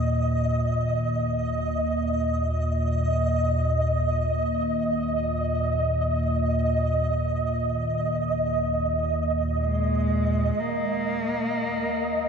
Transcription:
0.00 10.56 D#2 medium
0.00 10.56 A#2 medium
0.00 10.56 D#5 medium
9.64 10.60 G#3 medium
10.57 12.29 D#2 medium
10.57 12.29 A#2 medium
10.57 12.29 A#3 loud
10.57 12.29 D#5 medium

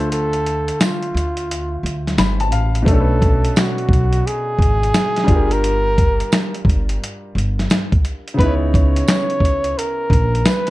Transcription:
0.00 0.69 D2 medium
0.00 2.46 D3 medium
0.00 2.47 A3 medium
0.00 2.50 F4 medium
0.00 0.11 A4 medium
0.00 2.51 C5 medium
0.00 2.48 E5 medium
0.12 0.83 A4 loud
0.12 closed hi-hat medium
0.33 closed hi-hat soft
0.46 closed hi-hat medium
0.68 closed hi-hat medium
0.80 2.18 F4 medium
0.80 finger snap medium
0.80 snare loud
0.80 closed hi-hat loud
0.80 tambourine medium
1.03 closed hi-hat soft
1.14 1.76 D2 medium
1.14 closed hi-hat medium
1.37 closed hi-hat medium
1.51 closed hi-hat loud
1.83 2.14 D2 medium
1.83 closed hi-hat medium
2.07 snare soft
2.07 closed hi-hat medium
2.18 2.52 G1 medium
2.18 2.39 B5 medium
2.18 finger snap medium
2.18 snare loud
2.18 closed hi-hat medium
2.18 tambourine medium
2.40 2.51 A5 medium
2.40 closed hi-hat soft
2.52 2.87 A1 medium
2.52 2.84 F5 medium
2.52 closed hi-hat medium
2.75 closed hi-hat soft
2.82 5.22 B2 medium
2.82 5.23 A3 medium
2.82 kick loud
2.87 3.48 B1 loud
2.87 5.25 C#4 medium
2.87 3.59 A4 loud
2.87 closed hi-hat medium
2.91 5.25 D4 medium
2.91 2.98 A4 medium
3.00 5.31 B4 medium
3.22 kick medium
3.22 closed hi-hat medium
3.45 closed hi-hat medium
3.56 4.28 F#4 medium
3.56 finger snap medium
3.56 snare loud
3.56 closed hi-hat loud
3.56 tambourine medium
3.78 closed hi-hat soft
3.89 4.20 B1 medium
3.89 kick medium
3.93 closed hi-hat medium
4.13 closed hi-hat soft
4.26 5.54 G#4 loud
4.26 closed hi-hat medium
4.59 4.90 G#1 loud
4.59 kick medium
4.59 closed hi-hat medium
4.83 closed hi-hat soft
4.94 finger snap medium
4.94 snare medium
4.94 closed hi-hat medium
4.94 tambourine medium
5.16 snare soft
5.16 closed hi-hat soft
5.24 7.98 G3 medium
5.24 7.99 D4 medium
5.28 6.21 G1 medium
5.28 8.00 F4 medium
5.28 8.02 G4 medium
5.28 kick loud
5.28 closed hi-hat medium
5.35 8.03 A#4 medium
5.51 6.55 A#4 loud
5.51 closed hi-hat soft
5.64 closed hi-hat medium
5.98 kick medium
5.98 closed hi-hat medium
6.20 closed hi-hat medium
6.32 finger snap medium
6.32 snare loud
6.32 closed hi-hat medium
6.32 tambourine medium
6.54 closed hi-hat soft
6.65 6.96 G1 medium
6.65 kick medium
6.70 closed hi-hat medium
6.89 closed hi-hat medium
7.04 closed hi-hat medium
7.35 7.66 G1 loud
7.35 closed hi-hat medium
7.59 snare soft
7.59 closed hi-hat soft
7.70 finger snap medium
7.70 snare loud
7.70 closed hi-hat medium
7.70 tambourine medium
7.92 kick loud
7.92 closed hi-hat soft
8.05 closed hi-hat medium
8.28 closed hi-hat soft
8.34 10.70 C#3 medium
8.34 10.70 B3 medium
8.39 9.00 C#2 loud
8.39 10.70 D#4 medium
8.39 8.55 B4 loud
8.39 kick loud
8.39 closed hi-hat medium
8.43 10.70 E4 medium
8.43 10.70 C#5 medium
8.74 9.79 C#5 loud
8.74 kick medium
8.74 closed hi-hat medium
8.96 closed hi-hat medium
9.08 finger snap medium
9.08 snare loud
9.08 closed hi-hat medium
9.08 tambourine medium
9.30 closed hi-hat soft
9.40 9.72 C#2 medium
9.40 kick medium
9.45 closed hi-hat medium
9.64 closed hi-hat soft
9.78 10.48 A#4 loud
9.78 closed hi-hat medium
10.10 10.41 A#1 loud
10.10 kick medium
10.10 closed hi-hat medium
10.35 closed hi-hat soft
10.45 10.70 B4 loud
10.45 finger snap medium
10.45 snare loud
10.45 closed hi-hat medium
10.45 tambourine medium
10.67 closed hi-hat soft

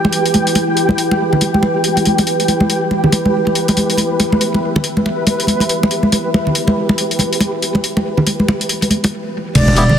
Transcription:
0.00 9.09 E4 medium
0.00 9.12 G4 medium
0.00 9.09 B4 medium
0.00 2.66 G5 medium
0.00 2.72 G5 medium
0.05 muted conga medium
0.12 closed hi-hat medium
0.25 closed hi-hat medium
0.34 closed hi-hat medium
0.34 muted conga soft
0.34 high conga medium
0.47 closed hi-hat medium
0.55 closed hi-hat medium
0.55 muted conga medium
0.77 closed hi-hat medium
0.89 muted conga soft
0.89 high conga loud
0.98 closed hi-hat medium
1.11 muted conga medium
1.33 low conga medium
1.41 closed hi-hat medium
1.41 muted conga soft
1.54 high conga medium
1.63 muted conga medium
1.84 closed hi-hat medium
1.97 closed hi-hat soft
1.97 muted conga soft
2.05 closed hi-hat medium
2.05 high conga medium
2.18 closed hi-hat soft
2.18 muted conga medium
2.27 closed hi-hat medium
2.40 closed hi-hat soft
2.48 closed hi-hat soft
2.48 muted conga soft
2.60 high conga medium
2.69 9.15 B4 medium
2.69 9.08 E5 medium
2.69 closed hi-hat medium
2.91 muted conga soft
3.04 low conga medium
3.12 closed hi-hat medium
3.12 muted conga medium
3.25 high conga medium
3.47 muted conga soft
3.55 closed hi-hat medium
3.68 closed hi-hat soft
3.68 muted conga medium
3.77 closed hi-hat medium
3.77 high conga medium
3.90 closed hi-hat soft
3.97 closed hi-hat medium
3.97 muted conga soft
4.20 closed hi-hat soft
4.20 muted conga medium
4.32 high conga medium
4.41 closed hi-hat medium
4.55 muted conga soft
4.76 muted conga medium
4.76 low conga medium
4.84 closed hi-hat medium
4.97 high conga medium
5.06 muted conga soft
5.27 closed hi-hat medium
5.27 muted conga medium
5.40 closed hi-hat soft
5.47 closed hi-hat medium
5.47 high conga medium
5.60 closed hi-hat soft
5.60 muted conga medium
5.69 closed hi-hat medium
5.83 muted conga medium
5.91 closed hi-hat soft
6.03 high conga medium
6.12 closed hi-hat medium
6.12 muted conga medium
6.34 muted conga medium
6.47 low conga medium
6.55 closed hi-hat medium
6.67 muted conga soft
6.67 high conga medium
6.89 muted conga medium
6.98 closed hi-hat medium
7.11 closed hi-hat soft
7.19 closed hi-hat medium
7.19 muted conga medium
7.19 high conga medium
7.33 closed hi-hat soft
7.40 closed hi-hat medium
7.40 muted conga medium
7.62 closed hi-hat soft
7.75 muted conga medium
7.75 high conga medium
7.84 closed hi-hat medium
7.97 muted conga medium
8.18 low conga medium
8.27 closed hi-hat medium
8.27 muted conga medium
8.40 high conga medium
8.48 muted conga medium
8.61 closed hi-hat soft
8.69 closed hi-hat medium
8.82 closed hi-hat medium
8.82 muted conga soft
8.90 closed hi-hat medium
8.90 high conga medium
9.04 closed hi-hat medium
9.04 muted conga medium
9.55 9.99 E1 loud
9.55 9.99 E4 medium
9.55 9.99 D5 loud
9.55 kick loud
9.55 closed hi-hat medium
9.55 crash loud
9.55 impact medium
9.68 high conga medium
9.76 9.84 B3 medium
9.76 9.84 E4 medium
9.76 9.84 G4 loud
9.76 closed hi-hat medium
9.76 muted conga soft
9.89 low conga medium

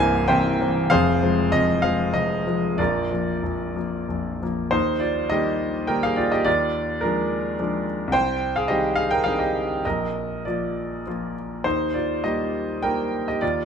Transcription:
0.00 0.29 C1 medium
0.00 0.29 C2 medium
0.00 0.61 E3 medium
0.00 0.61 A#3 medium
0.00 0.62 C4 medium
0.00 0.93 A#4 medium
0.00 0.28 C5 medium
0.00 0.29 E5 medium
0.00 0.90 F5 loud
0.00 0.28 G#5 loud
0.28 0.58 C1 medium
0.28 0.58 C2 medium
0.28 0.86 C5 medium
0.28 0.86 E5 medium
0.28 0.90 G5 medium
0.61 0.88 E3 medium
0.61 0.88 A#3 medium
0.61 0.88 C4 medium
0.90 1.21 F1 medium
0.90 1.21 F2 medium
0.90 1.48 G#4 medium
0.90 1.48 C5 medium
0.90 1.52 F5 loud
1.23 1.50 F3 medium
1.23 1.50 G#3 soft
1.23 1.50 C4 soft
1.52 1.82 F1 medium
1.52 1.82 F2 medium
1.52 1.82 D#5 loud
1.82 2.10 F3 soft
1.82 2.11 G#3 soft
1.82 2.11 C4 soft
1.82 2.13 F5 medium
2.14 2.45 F1 medium
2.14 2.45 F2 medium
2.14 2.79 D#5 medium
2.46 2.76 F3 soft
2.46 2.76 G#3 soft
2.46 2.76 C4 soft
2.76 3.09 A#0 medium
2.76 3.11 A#1 medium
2.76 4.39 F4 medium
2.76 4.39 A#4 medium
2.76 4.43 D5 medium
3.11 3.41 F3 soft
3.11 3.41 A#3 soft
3.43 3.75 A#0 soft
3.43 3.75 A#1 soft
3.76 4.06 F3 soft
3.76 4.06 A#3 soft
4.08 4.41 A#0 soft
4.08 4.41 A#1 soft
4.42 4.70 F3 soft
4.42 4.71 A#3 soft
4.71 5.29 D#2 medium
4.71 5.00 D#4 medium
4.71 5.01 C5 medium
5.00 5.28 F4 soft
5.00 5.30 D5 medium
5.30 5.85 D#3 soft
5.30 5.85 G3 soft
5.30 5.86 A#3 soft
5.30 5.85 G4 medium
5.30 5.88 D#5 medium
5.87 6.42 D#3 soft
5.87 6.42 G3 soft
5.87 6.42 A#3 soft
5.87 6.02 A#4 medium
5.87 6.03 G5 medium
6.03 6.17 G#4 medium
6.03 6.18 F5 medium
6.16 6.31 F4 medium
6.16 6.31 D5 medium
6.32 6.46 G4 medium
6.32 6.46 D#5 medium
6.44 7.00 D#2 medium
6.44 6.98 F4 medium
6.44 7.01 D5 medium
7.01 7.55 F3 soft
7.01 7.55 G#3 soft
7.01 7.59 D4 medium
7.01 7.86 A#4 medium
7.59 8.11 F3 soft
7.59 8.11 G#3 soft
7.59 8.11 D4 soft
8.07 8.64 C2 medium
8.12 8.52 C5 medium
8.12 8.55 G5 loud
8.56 8.69 G#4 medium
8.56 8.70 F5 medium
8.68 9.21 D#3 soft
8.68 9.21 G3 soft
8.68 9.21 C4 soft
8.68 8.95 G4 medium
8.68 8.96 D#5 medium
8.96 9.10 G#4 medium
8.96 9.10 F5 medium
9.11 9.24 A#4 medium
9.11 9.25 G5 medium
9.24 9.80 D#3 soft
9.24 9.81 G3 soft
9.24 9.81 C4 soft
9.24 9.38 G#4 medium
9.24 9.39 F5 medium
9.39 9.82 G4 medium
9.39 9.84 D#5 medium
9.85 10.45 A#1 medium
9.85 10.43 A#4 medium
9.85 10.46 D#5 medium
10.45 11.02 F3 soft
10.45 11.02 A#3 soft
10.45 11.06 F4 soft
10.45 11.35 D5 medium
11.07 11.61 F3 soft
11.07 11.62 A#3 soft
11.07 11.62 F4 soft
11.64 12.23 D#2 soft
11.64 11.93 D#4 medium
11.64 11.94 C5 medium
11.94 12.22 F4 soft
11.94 12.24 D5 medium
12.24 12.80 G3 soft
12.24 12.80 A#3 soft
12.24 12.80 D#4 soft
12.24 12.79 G4 soft
12.24 12.83 D#5 medium
12.82 13.38 G3 soft
12.82 13.38 A#3 soft
12.82 13.39 D#4 soft
12.82 13.25 A#4 medium
12.82 13.27 G5 medium
13.28 13.42 G4 medium
13.28 13.42 D#5 medium
13.41 13.65 D#2 soft
13.41 13.65 F4 medium
13.41 13.65 D5 medium

